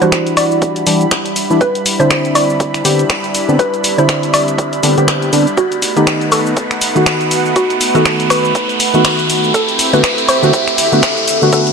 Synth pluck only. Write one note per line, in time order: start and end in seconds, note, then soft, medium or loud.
0.02 0.34 C5 loud
0.37 1.65 D5 loud
1.61 2.01 B4 loud
2.00 2.36 C5 loud
2.35 3.63 D5 loud
3.59 3.96 B4 loud
3.98 4.31 C5 loud
4.34 5.61 D5 loud
5.57 5.98 F#4 medium
5.97 6.33 G4 medium
6.32 7.60 A4 loud
7.56 7.92 F#4 loud
7.95 8.28 A4 loud
8.30 9.58 B4 loud
9.54 9.91 A4 loud
9.94 10.26 B4 loud
10.29 11.49 C5 loud
11.53 11.73 A4 loud